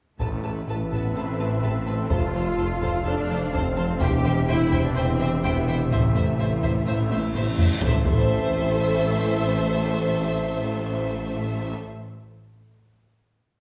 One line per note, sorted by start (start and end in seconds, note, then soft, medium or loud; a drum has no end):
0.19 0.62 A1 medium
0.19 0.62 A1 soft
0.19 2.12 A1 medium
0.19 0.34 A2 medium
0.19 2.07 E3 soft
0.19 3.97 A3 medium
0.19 0.88 A3 medium
0.19 2.07 A3 soft
0.19 0.88 A3 medium
0.19 0.27 A4 soft
0.19 3.97 A4 medium
0.19 0.28 B4 soft
0.19 2.07 B4 medium
0.19 2.07 E5 medium
0.19 0.27 A5 soft
0.19 taiko medium
0.43 0.58 A3 medium
0.43 0.52 A4 soft
0.43 0.52 B4 soft
0.43 0.51 A5 soft
0.66 1.09 A1 soft
0.66 0.82 A2 medium
0.66 0.76 A4 soft
0.66 0.76 B4 soft
0.66 0.77 A5 soft
0.91 1.06 A2 medium
0.91 1.15 B3 medium
0.91 1.16 B3 soft
0.91 1.00 A4 soft
0.91 1.02 B4 soft
0.91 1.00 A5 soft
0.91 taiko soft
1.15 1.57 A1 soft
1.15 1.57 A1 medium
1.15 1.30 A2 soft
1.15 2.11 C4 medium
1.15 2.09 C4 medium
1.15 1.23 A4 soft
1.15 1.25 B4 soft
1.15 1.24 A5 soft
1.39 1.54 A3 soft
1.39 1.47 A4 soft
1.39 1.47 B4 soft
1.39 1.47 A5 soft
1.62 2.05 A1 medium
1.62 2.05 A1 soft
1.62 1.78 A2 medium
1.62 1.72 A4 soft
1.62 1.71 B4 soft
1.62 1.72 A5 soft
1.86 2.01 A3 medium
1.86 1.96 A4 soft
1.86 1.95 B4 soft
1.86 1.95 A5 soft
2.09 2.52 F1 medium
2.09 4.02 F1 medium
2.09 2.25 F2 medium
2.09 7.82 C3 medium
2.09 3.98 F3 medium
2.09 3.97 A3 soft
2.09 3.06 F4 medium
2.09 2.18 A4 soft
2.09 2.17 C5 soft
2.09 4.02 F5 medium
2.09 2.20 A5 soft
2.09 taiko medium
2.34 2.49 F3 medium
2.34 2.42 A4 soft
2.34 2.43 C5 soft
2.34 2.42 A5 soft
2.57 3.00 F1 medium
2.57 2.72 F2 medium
2.57 2.67 A4 soft
2.57 2.66 C5 soft
2.57 2.65 A5 soft
2.81 2.96 F2 medium
2.81 2.89 A4 soft
2.81 2.91 C5 soft
2.81 2.89 A5 soft
2.81 taiko medium
3.05 3.48 F1 medium
3.05 3.20 F2 medium
3.05 3.53 D4 medium
3.05 3.13 A4 medium
3.05 3.15 C5 soft
3.05 3.13 A5 medium
3.29 3.44 F3 medium
3.29 3.37 A4 medium
3.29 3.40 C5 medium
3.29 3.37 A5 medium
3.53 3.95 F1 medium
3.53 3.96 F1 medium
3.53 3.68 F2 medium
3.53 4.01 C4 medium
3.53 3.61 A4 medium
3.53 3.62 C5 medium
3.53 3.61 A5 medium
3.53 taiko medium
3.76 3.92 F3 medium
3.76 3.86 A4 medium
3.76 3.85 C5 medium
3.76 3.84 A5 medium
4.00 5.94 E1 medium
4.00 4.43 E1 medium
4.00 4.15 E2 medium
4.00 7.58 C3 medium
4.00 7.58 E3 medium
4.00 7.81 E3 medium
4.00 4.49 G4 medium
4.00 5.92 G4 medium
4.00 4.49 G4 medium
4.00 4.09 C5 medium
4.00 4.08 E5 medium
4.00 7.80 E5 medium
4.00 4.08 G5 medium
4.00 taiko loud
4.24 4.39 E3 medium
4.24 4.33 C5 medium
4.24 4.32 E5 medium
4.24 4.32 G5 medium
4.48 4.91 E1 medium
4.48 4.63 E2 medium
4.48 4.84 E4 medium
4.48 4.57 C5 medium
4.48 4.56 E5 medium
4.48 4.56 G5 medium
4.71 4.87 E2 medium
4.71 4.80 C5 medium
4.71 4.80 E5 medium
4.71 4.79 G5 medium
4.71 taiko medium
4.84 4.96 D4 medium
4.96 5.38 E1 medium
4.96 5.39 E1 medium
4.96 5.11 E2 medium
4.96 5.43 C4 medium
4.96 5.44 C4 medium
4.96 5.04 C5 medium
4.96 5.05 E5 medium
4.96 5.04 G5 medium
5.19 5.35 E3 medium
5.19 5.28 C5 medium
5.19 5.28 E5 medium
5.19 5.27 G5 medium
5.43 5.86 E1 medium
5.43 5.58 E2 medium
5.43 5.91 B3 medium
5.43 5.92 B3 medium
5.43 5.52 C5 medium
5.43 5.53 E5 medium
5.43 5.51 G5 medium
5.43 taiko medium
5.67 5.82 E3 medium
5.67 5.76 C5 medium
5.67 5.75 E5 medium
5.67 5.76 G5 medium
5.91 6.26 A1 medium
5.91 6.34 A1 medium
5.91 7.82 A1 medium
5.91 6.06 A2 medium
5.91 7.34 A3 medium
5.91 7.32 A3 medium
5.91 7.80 E4 medium
5.91 6.00 C5 medium
5.91 5.99 E5 medium
5.91 6.00 E5 medium
5.91 taiko medium
5.91 reverse cymbal medium
6.14 6.29 A3 medium
6.14 6.23 C5 medium
6.14 6.22 E5 medium
6.14 6.25 E5 soft
6.14 taiko low medium
6.39 6.81 A1 medium
6.39 6.53 A2 medium
6.39 6.47 C5 medium
6.39 6.47 E5 soft
6.62 6.77 A2 medium
6.62 6.71 C5 soft
6.62 6.71 E5 soft
6.62 taiko medium
6.86 7.29 A1 medium
6.86 7.01 A2 medium
6.86 6.95 C5 medium
6.86 6.94 E5 soft
6.86 6.96 E5 medium
7.10 7.25 A3 medium
7.10 7.19 C5 soft
7.10 7.19 E5 soft
7.10 taiko high medium
7.34 7.76 A1 medium
7.34 7.77 A1 medium
7.34 7.49 A2 medium
7.34 7.43 C5 soft
7.34 7.43 E5 medium
7.34 7.44 E5 medium
7.34 taiko high medium
7.58 7.73 A3 medium
7.58 7.67 C5 soft
7.58 7.67 E5 soft
7.58 7.69 E5 medium
7.58 taiko low medium
7.81 7.96 A1 medium
7.81 11.49 E3 medium
7.81 7.97 A3 medium
7.81 11.48 C4 medium
7.81 11.49 C4 medium
7.81 11.48 E4 medium
7.81 7.96 A4 medium
7.81 7.98 C5 medium
7.81 11.48 E5 medium
7.81 7.97 E5 medium
7.81 taiko loud
7.81 impact medium
8.05 11.73 A1 medium
8.05 11.74 A1 medium
8.05 11.74 A3 medium
8.05 11.73 A4 medium
8.05 11.73 C5 medium
8.05 11.73 E5 medium
8.05 taiko loud